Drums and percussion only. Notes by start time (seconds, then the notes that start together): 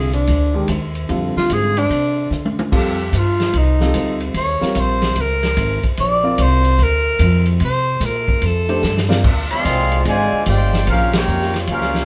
0.13 ride
0.27 ride
0.68 hi-hat pedal, ride
0.95 ride
1.09 ride
1.37 snare
1.50 hi-hat pedal, ride
1.77 ride
1.90 ride
2.32 hi-hat pedal
2.45 high tom
2.59 high tom
2.72 kick, crash
3.13 hi-hat pedal, ride
3.40 snare, ride
3.53 ride
3.80 snare
3.94 hi-hat pedal, ride
4.20 ride
4.34 ride
4.61 snare
4.75 hi-hat pedal, ride
5.02 snare, ride
5.16 ride
5.43 snare, ride
5.57 hi-hat pedal, ride
5.83 kick, ride
5.97 ride
6.38 hi-hat pedal, ride
6.64 ride
6.79 ride
7.19 hi-hat pedal, ride
7.46 ride
7.60 ride
8.01 hi-hat pedal, ride
8.28 kick
8.42 ride
8.69 ride
8.83 snare, hi-hat pedal
8.97 snare
9.10 snare
9.24 kick, crash
9.50 ride
9.65 hi-hat pedal, ride
9.92 ride
10.05 ride
10.46 hi-hat pedal, ride
10.73 snare
10.87 ride
11.13 snare, ride
11.28 hi-hat pedal
11.42 snare
11.54 snare, ride
11.67 ride
11.81 snare
11.94 snare